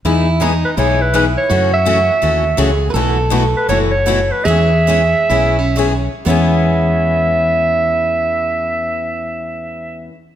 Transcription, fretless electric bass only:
X:1
M:4/4
L:1/8
Q:"Swing" 1/4=150
K:E
V:1 name="Fretless electric bass" clef=bass
E,,4 B,,,4 | F,,4 D,,2 C,,2 | B,,,4 F,,,4 | E,,4 B,,,4 |
E,,8- | E,,8 |]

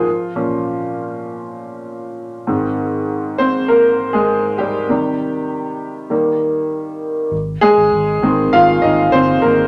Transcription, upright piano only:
X:1
M:4/4
L:1/16
Q:1/4=99
K:Ab
V:1 name="Upright piano"
[F,F]8- [F,F]2 z6 | z6 [Cc]2 [B,B]3 [A,A]3 [G,G]2- | [G,G]8- [G,G]2 z6 | z2 [A,A]6 [Ff]2 [Ee]2 [Cc]2 [B,B]2 |]
V:2 name="Upright piano" clef=bass
z2 [B,,F,D]2 z12 | [A,,E,C]6 z8 z2 | [C,E,G,]2 z6 [E,G,B,]6 z2 | z6 [E,A,C]8- [E,A,C]2 |]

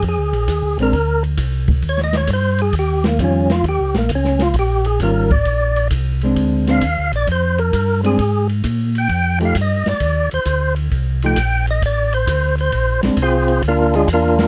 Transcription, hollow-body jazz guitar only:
X:1
M:4/4
L:1/8
Q:"Swing" 1/4=132
K:Bbmix
V:1 name="Hollow-body jazz guitar"
z3 [A,CD] z4 | z6 [E,G,_DF] z | z6 [E,G,_DF] z | z3 [A,CD]2 [A,CD] z2 |
z3 [A,CD] z4 | z [F,=A,EG] z6 | z [F,=A,EG] z6 | z [A,CD] z6 |]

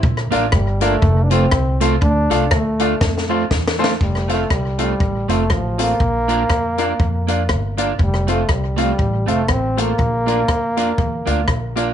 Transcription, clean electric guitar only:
X:1
M:4/4
L:1/8
Q:"Swing" 1/4=120
K:F
V:1 name="Clean electric guitar"
z [B,DF] z [B,DF] z [A,CF] z [A,CF] | z [A,DF] z [A,DF] z [A,CF] z [A,CF] | z [A,CF] z [A,CF] z [A,CF] z [A,CF] | z [B,DF] z [B,DF] z [B,DF] z [B,DF] |
z [A,CF] z [A,CF] z [A,CF] z [A,CF] | z [B,DF] z [B,DF] z [B,DF] z [B,DF] |]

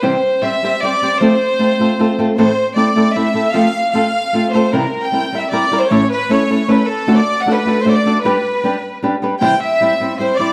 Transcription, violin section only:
X:1
M:3/4
L:1/16
Q:1/4=154
K:C
V:1 name="Violin section"
c4 e4 d4 | c8- c2 z2 | c4 d4 e4 | f4 f6 c2 |
_B3 g4 e d3 c | ^c2 B2 c4 B2 A2- | A d3 ^f B3 c d3 | B8 z4 |
g2 e6 c2 d2 |]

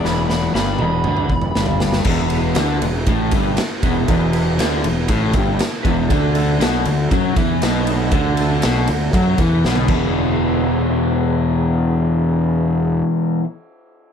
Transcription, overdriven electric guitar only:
X:1
M:4/4
L:1/8
Q:1/4=119
K:Emix
V:1 name="Overdriven electric guitar" clef=bass
E,,2 =G,, E,, D, E,, G,,2 | E,,2 D, E,, A,, =G,, z E,, | E,,2 D, E,, A,, =G,, z E,, | D,2 B,, D, F, E, B,,2 |
D,2 B,, D, F, E, B,, [E,,B,,E,]- | [E,,B,,E,]8- | [E,,B,,E,]8 |]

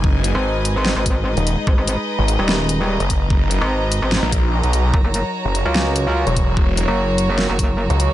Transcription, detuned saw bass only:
X:1
M:4/4
L:1/16
Q:1/4=147
K:G#m
V:1 name="Detuned saw bass" clef=bass
F,,,3 z8 z2 D,,,2 z | z4 z G,,,2 z6 F,,,3- | F,,,3 z6 A,,,4 B,,,3 | z4 z F,,,2 z6 E,,,3- |
E,,,3 z8 z2 C,,2 z |]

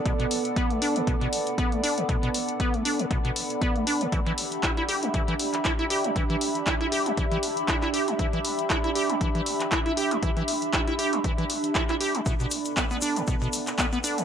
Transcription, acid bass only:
X:1
M:4/4
L:1/16
Q:"Swing 16ths" 1/4=118
K:Edor
V:1 name="Acid bass" clef=bass
B,, B,, z2 B, A, D D, B,, B,, z2 B, A, D D, | B,, B,, z2 B, A, D D, B,, B,, z2 B, A, D D, | E, E, z2 E E G G, E, E, z2 E E G G, | E, E, z2 E E G G, E, E, z2 E E G G, |
E, E, z2 E E G G, E, E, z2 E E G G, | E, E, z2 E E G G, E, E, z2 E E G G, | B,, B,, z2 B, B, D D, B,, B,, z2 B, B, D D, |]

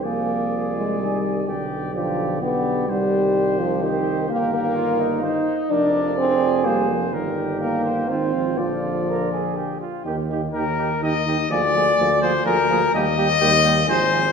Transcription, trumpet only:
X:1
M:3/4
L:1/8
Q:1/4=126
K:Cm
V:1 name="Trumpet"
d6 | d2 d2 d2 | c4 c2 | [K:Eb] B4 c2 |
d4 c2 | B2 B c c2 | d4- d z | z2 B2 e2 |
d3 c B2 | e4 c2 |]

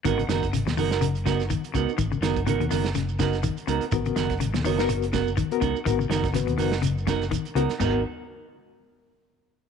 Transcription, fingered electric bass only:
X:1
M:4/4
L:1/16
Q:"Swing 16ths" 1/4=124
K:G#m
V:1 name="Fingered electric bass" clef=bass
G,,,2 F,,,2 G,,, D,, F,,,8 C,, z | G,,,2 F,,,2 G,,, D,, F,,,8 C,, z | G,,,2 F,,,2 G,,, D,, F,,,8 C,, z | G,,,2 F,,,2 G,,, D,, F,,,8 C,, z |
G,,,2 z12 z2 |]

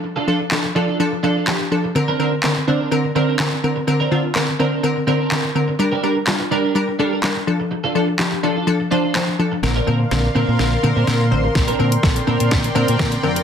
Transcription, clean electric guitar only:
X:1
M:4/4
L:1/16
Q:1/4=125
K:Bb
V:1 name="Clean electric guitar"
z [DFA] [DFA] z3 [DFA] [DFA] z2 [DFA] [DFA] z4 | z [CDB] [CDB] z3 [CDB] [CDB] z2 [CDB] [CDB] z4 | z [CDB] [CDB] z3 [CDB] [CDB] z2 [CDB] [CDB] z4 | z [DGB] [DGB] z3 [DGB] [DGB] z2 [DGB] [DGB] z4 |
z [DFA] [DFA] z3 [DFA] [DFA] z2 [DFA] [DFA] z4 | z [CDB] [CDB] z3 [CDB] [CDB] [CDB] z2 [CDB] z4 | z [CDB] [CDB] z3 [CDB] [CDB] z2 [CDB] [CDB] z4 |]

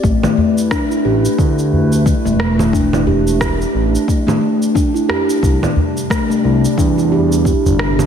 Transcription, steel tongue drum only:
X:1
M:4/4
L:1/16
Q:"Swing 16ths" 1/4=89
K:Am
V:1 name="Steel tongue drum"
A, A, A, z D E G z4 z A, A, A, z | D E G z4 z A, A, A, z D E G z | z4 A, A, A, z D E G z4 z |]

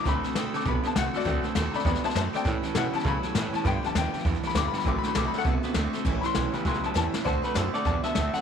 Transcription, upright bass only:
X:1
M:4/4
L:1/8
Q:"Swing" 1/4=200
K:Dmix
V:1 name="Upright bass" clef=bass
D,, z C,, z B,,, z C,, z | D,, z _E,, z =E,, z F,, z | A,, z B,, z ^C, z A,, z | G,, z _E,, z =E,, z D,, z |
A,,, z B,,, z C,, z D,, z | A,,, z B,,, z ^C,, z E,, z | D,, z F,, z E,, z D,, z |]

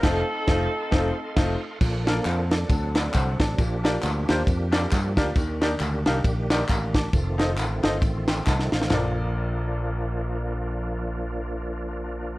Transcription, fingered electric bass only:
X:1
M:4/4
L:1/8
Q:"Swing" 1/4=135
K:Bb
V:1 name="Fingered electric bass" clef=bass
F,,, z F,,, z F,,, z F,,, z | B,,,2 F,,2 D,,2 C,, A,,, | B,,,2 D,, E,, F,,2 G,, D,, | E,,2 D,, C,, B,,,2 A,,,2 |
F,,,2 A,,, G,,, A,,,2 C,, A,,, | B,,,8- | B,,,8 |]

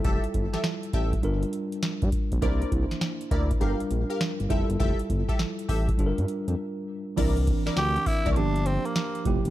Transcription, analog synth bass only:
X:1
M:4/4
L:1/16
Q:"Swing 16ths" 1/4=101
K:Gdor
V:1 name="Analog synth bass" clef=bass
F,,, z G,,, z3 A,,,2 G,,,2 z3 G,, z B,,, | C,,2 C,, z3 D,,2 G,,, B,,, B,,, z2 G,,, F,,, G,,, | F,,, z G,,, z3 A,,,2 G,,, G,, z F,, z4 | C,,3 z D,,2 z C,, G,,,4 z2 F,,, G,,, |]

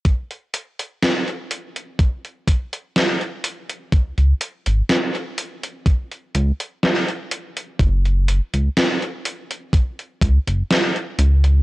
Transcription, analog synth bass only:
X:1
M:4/4
L:1/16
Q:1/4=62
K:C#mix
V:1 name="Analog synth bass" clef=bass
z16 | C,, C,, z G,,, z6 C,, z4 z | F,,,2 z C,, z6 C,, F,,, z2 C,,2 |]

